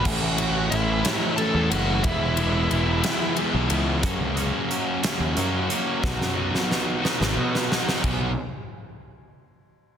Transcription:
0.03 picked electric bass A1, distorted electric guitar A2 E3 A3 C#4 E4, lead electric guitar F#4 F#5, kick, crash
0.37 distorted electric guitar A3 C#4 E4, ride
0.70 picked electric bass A1, lead electric guitar E4 E5, ride
1.03 distorted electric guitar A2 E3 A3 C#4 E4, snare, ride
1.15 lead electric guitar D#5
1.36 distorted electric guitar E3 A3 C#4 E4, lead electric guitar A4 A5, ride
1.54 picked electric bass E2
1.70 picked electric bass F#1, distorted electric guitar A3 C#4 E4, lead electric guitar F#4 F#5, ride
2.03 picked electric bass E1, distorted electric guitar E3 G#3 B3 E4, lead electric guitar E4 E5, kick, ride
2.37 distorted electric guitar G#3 B3 E4, ride
2.71 picked electric bass E1, ride
3.03 distorted electric guitar E3 G#3 B3 E4, snare, ride
3.37 distorted electric guitar E3 G#3 B3 E4, ride
3.54 picked electric bass B1
3.69 picked electric bass C#2, distorted electric guitar G#3 B3 E4, ride
4.02 distorted electric guitar F#2 C#3 F#3 A#3 C#4 F#4, picked electric bass F#2, kick, closed hi-hat
4.19 picked electric bass C#2
4.36 distorted electric guitar F#3 A#3 C#4 F#4, closed hi-hat
4.71 closed hi-hat
5.03 distorted electric guitar F#2 C#3 F#3 A#3 C#4 F#4, snare, closed hi-hat
5.20 picked electric bass D#2
5.35 picked electric bass F#2, distorted electric guitar F#3 A#3 C#4 F#4, closed hi-hat
5.68 distorted electric guitar F#3 A#3 C#4 F#4, closed hi-hat
6.02 picked electric bass B1, distorted electric guitar B2 F#3 B3 D#4 F#4, kick, snare
6.21 picked electric bass F#2, snare
6.35 distorted electric guitar B3 D#4 F#4
6.55 snare
6.71 snare
7.02 distorted electric guitar B2 F#3 B3 D#4 F#4, snare
7.21 picked electric bass G#1, snare
7.35 picked electric bass B2, distorted electric guitar F#3 B3 D#4 F#4
7.55 snare
7.69 distorted electric guitar B3 D#4 F#4, snare
7.89 snare
8.03 picked electric bass B1, distorted electric guitar B2 F#3 B3, kick, crash

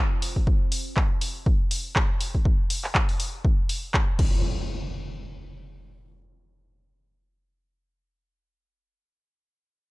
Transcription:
Already playing: ambient pad C4 F4 C5
0.22 open hi-hat
0.36 kick
0.47 kick
0.72 open hi-hat
0.97 kick, clap
1.21 open hi-hat
1.46 kick
1.71 open hi-hat
1.96 kick, clap
2.21 open hi-hat
2.35 kick
2.45 kick
2.70 open hi-hat
2.84 clap
2.95 kick, clap
3.09 open hi-hat
3.20 open hi-hat
3.45 kick
3.69 open hi-hat
3.94 kick, clap
4.19 kick, crash, impact

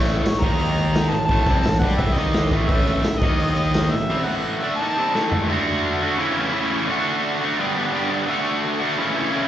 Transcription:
Already playing: fingered electric bass A1, overdriven electric guitar A2 E3 A3, harmonica C#5
0.01 tambourine
0.08 tambourine
0.24 harmonica C#5, muted overdriven electric guitar stroke, muted fingered electric bass stroke, snare, open hi-hat, tambourine
0.34 tambourine
0.41 fingered electric bass D#2, overdriven electric guitar D#3 A#3 D#4, harmonica A#5, kick, tambourine
0.51 tambourine
0.60 open hi-hat, tambourine
0.78 tambourine
0.87 tambourine
0.94 snare, open hi-hat, tambourine
1.09 fingered electric bass A1, harmonica A5
1.13 overdriven electric guitar A2 E3, tambourine
1.23 harmonica A5, tambourine
1.29 fingered electric bass A1, overdriven electric guitar A2 E3 A3, kick, open hi-hat, tambourine
1.38 harmonica A5, tambourine
1.47 fingered electric bass C2, overdriven electric guitar C3 G3 C4, kick, tambourine
1.61 harmonica A5, open hi-hat, tambourine
1.66 fingered electric bass A1, overdriven electric guitar A2 E3, snare
1.72 tambourine
1.79 fingered electric bass G2, harmonica F#5, kick, tambourine
1.84 overdriven electric guitar G3 D4 G4
1.90 tambourine
1.98 fingered electric bass C2, overdriven electric guitar C3 G3 C4, harmonica E5, kick, open hi-hat, tambourine
2.13 fingered electric bass D#2, harmonica D#5
2.18 overdriven electric guitar D#3 A#3 D#4, tambourine
2.27 tambourine
2.33 snare, open hi-hat, tambourine
2.51 fingered electric bass A1, overdriven electric guitar A2 E3 A3, kick, tambourine
2.62 tambourine
2.67 fingered electric bass A1, overdriven electric guitar A2 E3, harmonica E5, kick, open hi-hat, tambourine
2.72 overdriven electric guitar A3
2.80 tambourine
2.87 tambourine
3.03 muted fingered electric bass stroke, snare, open hi-hat, tambourine
3.07 muted overdriven electric guitar stroke
3.14 tambourine
3.19 fingered electric bass D#2, harmonica D#5, kick, tambourine
3.23 overdriven electric guitar D#3 A#3 D#4
3.30 tambourine
3.39 open hi-hat, tambourine
3.55 harmonica D#5, tambourine
3.74 snare, open hi-hat, tambourine
3.91 fingered electric bass A1, overdriven electric guitar A2 E3, harmonica E5, tambourine
4.01 tambourine
4.09 overdriven electric guitar C3 G3 C4
4.25 overdriven electric guitar A2 E3 A3, harmonica F#5
4.59 overdriven electric guitar D3 A3, harmonica E5
4.64 overdriven electric guitar D4
4.76 harmonica A5
4.80 overdriven electric guitar D#3 A#3 D#4
4.97 overdriven electric guitar C3 G3 C4
5.14 overdriven electric guitar A2 E3 A3, snare
5.32 floor tom
5.48 overdriven electric guitar D3 A3 D4 F#4
6.01 overdriven electric guitar A3 D4 F#4
6.17 overdriven electric guitar C#3 E3 A3 C#4 E4
6.35 overdriven electric guitar A3 C#4 E4
6.52 overdriven electric guitar C#3 E3 A3 C#4 E4
6.70 overdriven electric guitar A3 C#4 E4
6.88 overdriven electric guitar D3 A3 D4 F#4
7.41 overdriven electric guitar D4 F#4
7.45 overdriven electric guitar A3
7.59 overdriven electric guitar G2 D3 G3 B3 D4 G4
7.76 overdriven electric guitar G3 B3 D4 G4
7.93 overdriven electric guitar G2 D3 G3 B3 D4 G4
8.11 overdriven electric guitar G3 B3 D4 G4
8.27 overdriven electric guitar D3 A3 D4
8.31 overdriven electric guitar F#4
8.80 overdriven electric guitar A3 D4 F#4
8.97 overdriven electric guitar C#3 E3 A3 C#4 E4
9.15 overdriven electric guitar A3 C#4 E4
9.31 overdriven electric guitar C#3 E3 A3 C#4 E4

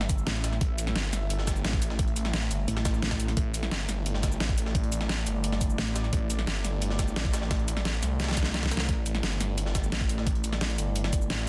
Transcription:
Already playing: detuned saw bass G1, ambient pad A3 E4 E5
0.01 snare
0.09 kick, closed hi-hat, shaker
0.18 shaker
0.27 wobble bass A1, snare, closed hi-hat
0.44 snare, closed hi-hat, shaker
0.53 snare
0.61 detuned saw bass A1, kick, closed hi-hat
0.78 closed hi-hat, shaker
0.87 snare
0.96 detuned saw bass G1, snare, closed hi-hat
1.13 detuned saw bass G1, snare, closed hi-hat, shaker
1.30 closed hi-hat, shaker
1.39 snare
1.47 kick, snare, closed hi-hat, shaker
1.56 shaker
1.65 detuned saw bass A1, snare, closed hi-hat
1.73 kick, snare
1.82 closed hi-hat, shaker
1.90 snare
1.99 kick, closed hi-hat
2.08 closed hi-hat
2.16 detuned saw bass A1, closed hi-hat, shaker
2.25 snare
2.33 snare, closed hi-hat
2.42 closed hi-hat
2.51 detuned saw bass G1, closed hi-hat, shaker
2.68 wobble bass A1, closed hi-hat, shaker
2.77 snare
2.85 kick, snare, closed hi-hat, shaker
2.94 shaker
3.02 snare, closed hi-hat
3.11 kick, snare, closed hi-hat
3.20 closed hi-hat, shaker
3.28 snare, closed hi-hat
3.37 detuned saw bass A1, ambient pad D5, kick, closed hi-hat
3.54 closed hi-hat, shaker
3.63 snare
3.71 detuned saw bass G1, snare, closed hi-hat
3.89 detuned saw bass G1, snare, closed hi-hat, shaker
4.06 closed hi-hat, shaker
4.15 snare
4.23 kick, snare, closed hi-hat, shaker
4.32 shaker
4.40 detuned saw bass A1, snare, closed hi-hat
4.49 kick, snare
4.58 closed hi-hat, shaker
4.66 snare
4.75 kick, closed hi-hat
4.84 closed hi-hat
4.92 detuned saw bass A1, closed hi-hat, shaker
5.01 snare
5.09 snare, closed hi-hat
5.18 closed hi-hat
5.27 detuned saw bass G1, closed hi-hat, shaker
5.44 closed hi-hat, shaker
5.52 snare
5.61 kick, closed hi-hat, shaker
5.70 shaker
5.78 wobble bass A1, snare, closed hi-hat
5.96 snare, closed hi-hat, shaker
6.04 snare
6.13 detuned saw bass A1, kick, closed hi-hat
6.30 closed hi-hat, shaker
6.39 snare
6.47 detuned saw bass G1, snare, closed hi-hat
6.65 detuned saw bass G1, snare, closed hi-hat, shaker
6.82 closed hi-hat, shaker
6.90 snare
6.99 kick, snare, closed hi-hat, shaker
7.08 shaker
7.16 detuned saw bass A1, snare, closed hi-hat
7.25 kick, snare
7.33 snare, closed hi-hat, shaker
7.42 snare
7.51 kick, snare, closed hi-hat
7.59 closed hi-hat
7.68 detuned saw bass A1, closed hi-hat, shaker
7.77 snare
7.85 snare, closed hi-hat
7.94 closed hi-hat
8.03 detuned saw bass C2, snare, closed hi-hat, shaker
8.20 snare, closed hi-hat, shaker
8.24 snare, closed hi-hat
8.28 snare, closed hi-hat
8.31 snare, closed hi-hat
8.37 kick, snare, closed hi-hat, shaker
8.43 snare, shaker
8.46 snare, closed hi-hat
8.54 snare, closed hi-hat
8.63 kick, snare, closed hi-hat
8.66 snare
8.71 snare, closed hi-hat, shaker
8.77 snare
8.80 snare, closed hi-hat
8.89 detuned saw bass A1, ambient pad D5, kick, closed hi-hat
9.06 closed hi-hat, shaker
9.15 snare
9.23 detuned saw bass G1, snare, closed hi-hat
9.40 detuned saw bass G1, snare, closed hi-hat, shaker
9.58 closed hi-hat, shaker
9.66 snare
9.75 kick, snare, closed hi-hat, shaker
9.84 shaker
9.92 detuned saw bass A1, snare, closed hi-hat
10.01 kick, snare
10.09 closed hi-hat, shaker
10.18 snare
10.27 kick, closed hi-hat
10.35 closed hi-hat
10.44 detuned saw bass A1, closed hi-hat, shaker
10.53 snare
10.61 snare, closed hi-hat
10.70 closed hi-hat
10.78 detuned saw bass G1, closed hi-hat, shaker
10.96 closed hi-hat, shaker
11.04 snare
11.13 kick, closed hi-hat, shaker
11.21 shaker
11.30 wobble bass A1, snare, closed hi-hat

